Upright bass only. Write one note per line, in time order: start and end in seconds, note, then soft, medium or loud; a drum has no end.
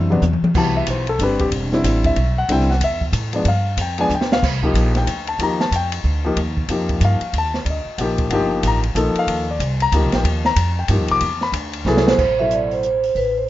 0.00 0.21 F#2 loud
0.22 0.41 E2 loud
0.42 muted upright bass stroke soft
0.54 0.86 C2 medium
0.87 1.18 B1 medium
1.19 1.51 G1 medium
1.52 1.83 E1 medium
1.84 2.16 A1 loud
2.16 2.48 B1 loud
2.49 2.80 C2 medium
2.81 3.12 E2 medium
3.13 3.44 A2 loud
3.45 3.77 G2 medium
3.77 4.09 F2 medium
4.10 4.42 D2 loud
4.42 4.73 C2 medium
4.74 5.06 A#1 medium
5.06 5.38 D2 medium
5.39 5.71 D#2 medium
5.71 6.03 F2 medium
6.04 6.36 D2 loud
6.37 6.68 D#2 loud
6.69 7.00 F2 loud
7.01 7.20 G2 loud
7.21 muted upright bass stroke soft
7.33 7.65 D#2 medium
7.65 7.85 D2 medium
7.85 muted upright bass stroke soft
7.98 8.30 A#1 loud
8.30 8.62 G1 loud
8.63 8.95 A1 loud
8.95 9.14 A#1 loud
9.27 9.59 D#2 medium
9.59 9.91 C2 loud
9.92 10.03 D2 loud
10.03 10.12 C2 medium
10.13 10.23 A#1 medium
10.24 10.55 D#2 loud
10.56 10.88 F2 medium
10.89 10.99 G2 loud
10.99 11.09 D#2 medium
11.10 11.20 C2 medium
11.21 11.52 E2 loud
11.52 11.84 D2 loud
11.85 12.17 C2 loud
12.18 13.12 A1 medium
13.15 13.49 A1 medium